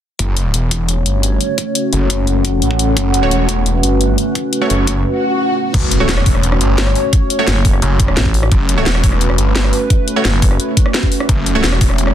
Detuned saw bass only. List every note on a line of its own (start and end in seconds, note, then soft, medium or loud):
0.19 0.53 F#1 medium
0.54 1.05 E1 medium
1.06 1.39 G1 medium
1.93 2.26 F#1 medium
2.27 2.61 F#1 loud
2.62 2.95 A1 medium
2.97 3.30 F#1 medium
3.31 3.82 E1 medium
3.83 4.17 G1 loud
4.70 5.03 F#1 medium
5.74 6.07 F#1 medium
6.09 6.59 E1 medium
6.61 6.94 G1 loud
7.82 8.16 F#1 loud
8.52 8.85 F#1 medium
8.86 9.37 E1 loud
9.38 9.72 G1 medium
11.29 11.62 F#1 medium
11.64 12.14 E1 loud